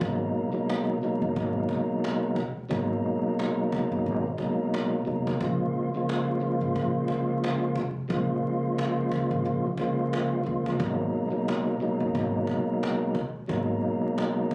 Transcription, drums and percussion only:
0.01 cajon bass
0.34 cajon slap
0.54 cajon slap
0.69 cajon slap
0.90 cajon slap
1.03 cajon slap
1.22 cajon slap
1.36 cajon bass, cajon slap
1.55 cajon slap
1.69 cajon bass
1.90 cajon slap
2.04 cajon slap
2.23 cajon slap
2.36 cajon bass
2.57 cajon slap
2.71 cajon bass
2.91 cajon slap
3.04 cajon slap
3.24 cajon slap
3.39 cajon slap
3.59 cajon slap
3.72 cajon bass
3.92 cajon slap
4.07 cajon slap
4.25 cajon slap
4.38 cajon bass
4.60 cajon slap
4.74 cajon slap
4.93 cajon slap
5.08 cajon slap
5.27 cajon bass
5.40 cajon bass
5.74 cajon slap
5.93 cajon slap
6.09 cajon slap
6.29 cajon slap
6.42 cajon slap
6.62 cajon slap
6.76 cajon bass, cajon slap
6.94 cajon slap
7.08 cajon bass
7.29 cajon slap
7.44 cajon slap
7.63 cajon slap
7.75 cajon bass
7.97 cajon slap
8.10 cajon bass
8.43 cajon slap
8.63 cajon slap
8.78 cajon slap
8.98 cajon slap
9.12 cajon bass
9.31 cajon slap
9.46 cajon slap
9.64 cajon slap
9.78 cajon bass
9.99 cajon slap
10.13 cajon slap
10.32 cajon slap
10.47 cajon slap
10.66 cajon bass
10.80 cajon bass
11.13 cajon slap
11.32 cajon slap
11.48 cajon slap
11.68 cajon slap
11.81 cajon slap
12.01 cajon slap
12.15 cajon bass, cajon slap
12.34 cajon slap
12.47 cajon bass
12.69 cajon slap
12.83 cajon slap
13.02 cajon slap
13.15 cajon bass
13.36 cajon slap
13.49 cajon bass
13.70 cajon slap
13.83 cajon slap
14.02 cajon slap
14.18 cajon slap
14.38 cajon slap
14.51 cajon bass

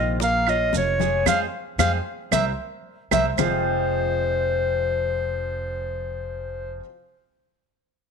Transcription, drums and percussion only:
0.20 high bongo, high conga, maracas
0.47 high conga, claves, maracas
0.73 high bongo, low bongo, high conga, maracas
1.00 high bongo, high conga, maracas
1.26 low bongo, high conga, claves, maracas
1.79 low bongo, high conga, claves, maracas
2.32 low bongo, high conga, claves, maracas
3.11 low bongo, high conga, claves, maracas
3.38 low bongo, low conga, claves, maracas

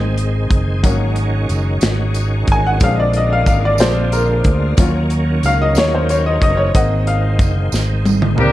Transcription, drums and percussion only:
0.18 closed hi-hat
0.51 kick, closed hi-hat
0.84 kick, closed hi-hat, tambourine
1.16 closed hi-hat
1.49 closed hi-hat, tambourine
1.81 snare, closed hi-hat, tambourine
2.14 closed hi-hat, tambourine
2.47 kick, closed hi-hat
2.80 kick, closed hi-hat, tambourine
3.13 closed hi-hat
3.46 kick, closed hi-hat, tambourine
3.78 snare, closed hi-hat, tambourine
4.12 closed hi-hat, tambourine
4.44 kick, closed hi-hat
4.77 kick, closed hi-hat, tambourine
5.10 closed hi-hat
5.43 closed hi-hat, tambourine
5.75 snare, closed hi-hat, tambourine
6.09 closed hi-hat, tambourine
6.42 kick, closed hi-hat
6.75 kick, closed hi-hat, tambourine
7.07 closed hi-hat
7.39 kick, closed hi-hat, tambourine
7.72 snare, tambourine
8.06 high tom, tambourine
8.22 mid tom
8.38 mid tom

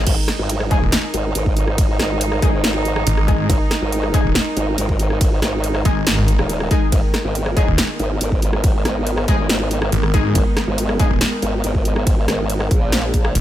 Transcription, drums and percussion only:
0.07 kick, closed hi-hat, ride, crash
0.28 cross-stick, snare, closed hi-hat
0.49 closed hi-hat, ride
0.60 cross-stick
0.71 kick, closed hi-hat
0.92 snare, closed hi-hat, ride
1.14 closed hi-hat
1.35 closed hi-hat, ride
1.46 kick
1.57 closed hi-hat
1.68 cross-stick
1.78 kick, closed hi-hat, ride
2.00 cross-stick, snare, closed hi-hat
2.21 closed hi-hat, ride
2.32 cross-stick
2.42 kick, closed hi-hat
2.64 snare, closed hi-hat, ride
2.85 closed hi-hat
2.96 cross-stick
3.07 closed hi-hat, ride
3.18 cross-stick
3.28 kick, closed hi-hat
3.50 kick, closed hi-hat, ride
3.71 cross-stick, snare, closed hi-hat
3.92 closed hi-hat, ride
4.03 cross-stick
4.14 kick, closed hi-hat
4.35 snare, closed hi-hat, ride
4.57 closed hi-hat
4.78 closed hi-hat, ride
4.89 kick
4.99 closed hi-hat
5.10 cross-stick
5.21 kick, closed hi-hat, ride
5.42 cross-stick, snare, closed hi-hat
5.64 closed hi-hat, ride
5.75 cross-stick
5.85 kick, closed hi-hat
6.07 snare, closed hi-hat, ride
6.28 closed hi-hat
6.39 cross-stick
6.49 closed hi-hat, ride
6.60 cross-stick
6.71 kick, closed hi-hat
6.92 kick, closed hi-hat, ride
7.14 cross-stick, snare, closed hi-hat
7.35 closed hi-hat, ride
7.46 cross-stick
7.57 kick, closed hi-hat
7.78 snare, closed hi-hat, ride
7.99 closed hi-hat
8.21 closed hi-hat, ride
8.32 kick
8.42 closed hi-hat
8.53 cross-stick
8.64 kick, closed hi-hat, ride
8.85 cross-stick, snare, closed hi-hat
9.07 closed hi-hat, ride
9.18 cross-stick
9.28 kick, closed hi-hat
9.49 snare, closed hi-hat, ride
9.71 closed hi-hat
9.82 cross-stick
9.92 closed hi-hat, ride
10.03 cross-stick
10.14 kick, closed hi-hat
10.35 kick, closed hi-hat, ride
10.57 cross-stick, snare, closed hi-hat
10.78 closed hi-hat, ride
10.89 cross-stick
11.00 kick, closed hi-hat
11.21 snare, closed hi-hat, ride
11.42 closed hi-hat
11.64 closed hi-hat, ride
11.75 kick
11.85 closed hi-hat
11.96 cross-stick
12.07 kick, closed hi-hat, ride
12.28 cross-stick, snare, closed hi-hat
12.50 closed hi-hat, ride
12.60 cross-stick
12.71 kick, closed hi-hat
12.92 snare, closed hi-hat, ride
13.14 kick, closed hi-hat
13.25 cross-stick
13.35 closed hi-hat, ride

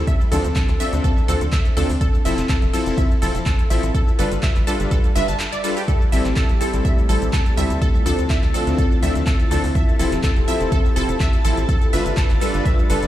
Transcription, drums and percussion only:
0.07 kick, closed hi-hat, shaker
0.21 shaker
0.32 open hi-hat, shaker
0.44 closed hi-hat, shaker
0.56 kick, clap, closed hi-hat, shaker
0.68 clap, closed hi-hat, shaker
0.80 open hi-hat, shaker
0.93 closed hi-hat, shaker
1.04 kick, closed hi-hat, shaker
1.18 shaker
1.28 open hi-hat, shaker
1.41 closed hi-hat, shaker
1.52 kick, clap, closed hi-hat, shaker
1.65 closed hi-hat, shaker
1.77 open hi-hat, shaker
1.90 open hi-hat, shaker
2.01 kick, closed hi-hat, shaker
2.15 shaker
2.25 open hi-hat, shaker
2.38 clap, closed hi-hat, shaker
2.49 kick, clap, closed hi-hat, shaker
2.62 closed hi-hat, shaker
2.73 open hi-hat, shaker
2.86 closed hi-hat, shaker
2.98 kick, closed hi-hat, shaker
3.11 shaker
3.22 open hi-hat, shaker
3.35 closed hi-hat, shaker
3.46 kick, clap, closed hi-hat, shaker
3.59 closed hi-hat, shaker
3.70 open hi-hat, shaker
3.83 closed hi-hat, shaker
3.95 kick, closed hi-hat, shaker
4.08 shaker
4.19 open hi-hat, shaker
4.32 closed hi-hat, shaker
4.43 kick, clap, closed hi-hat, shaker
4.56 clap, closed hi-hat, shaker
4.67 open hi-hat, shaker
4.80 closed hi-hat, shaker
4.91 kick, closed hi-hat, shaker
5.04 closed hi-hat, shaker
5.15 open hi-hat, shaker
5.28 closed hi-hat, shaker
5.40 clap, closed hi-hat, shaker
5.53 closed hi-hat, shaker
5.64 open hi-hat, shaker
5.77 open hi-hat, shaker
5.88 kick, closed hi-hat, shaker
6.02 shaker
6.12 open hi-hat, shaker
6.25 clap, closed hi-hat, shaker
6.36 kick, clap, closed hi-hat, shaker
6.49 closed hi-hat, shaker
6.61 open hi-hat, shaker
6.73 closed hi-hat, shaker
6.85 kick, closed hi-hat, shaker
6.98 shaker
7.09 open hi-hat, shaker
7.22 closed hi-hat, shaker
7.33 kick, clap, closed hi-hat, shaker
7.46 closed hi-hat, shaker
7.57 open hi-hat, shaker
7.70 closed hi-hat, shaker
7.82 kick, closed hi-hat, shaker
7.95 shaker
8.06 open hi-hat, shaker
8.19 closed hi-hat, shaker
8.30 kick, clap, closed hi-hat, shaker
8.43 clap, closed hi-hat, shaker
8.54 open hi-hat, shaker
8.67 closed hi-hat, shaker
8.78 kick, closed hi-hat, shaker
8.92 shaker
9.03 open hi-hat, shaker
9.15 closed hi-hat, shaker
9.27 kick, clap, closed hi-hat, shaker
9.40 closed hi-hat, shaker
9.51 open hi-hat, shaker
9.64 open hi-hat, shaker
9.75 kick, closed hi-hat, shaker
9.89 shaker
9.99 open hi-hat, shaker
10.12 clap, closed hi-hat, shaker
10.23 kick, clap, closed hi-hat, shaker
10.36 closed hi-hat, shaker
10.48 open hi-hat, shaker
10.61 closed hi-hat, shaker
10.72 kick, closed hi-hat, shaker
10.86 shaker
10.96 open hi-hat, shaker
11.09 closed hi-hat, shaker
11.20 kick, clap, closed hi-hat, shaker
11.33 closed hi-hat, shaker
11.45 open hi-hat, shaker
11.57 closed hi-hat, shaker
11.69 kick, closed hi-hat, shaker
11.82 closed hi-hat, shaker
11.93 open hi-hat, shaker
12.06 closed hi-hat, shaker
12.17 kick, clap, closed hi-hat, shaker
12.30 clap, closed hi-hat, shaker
12.41 open hi-hat, shaker
12.54 closed hi-hat, shaker
12.66 kick, closed hi-hat, shaker
12.79 shaker
12.90 open hi-hat, shaker
13.02 closed hi-hat, shaker

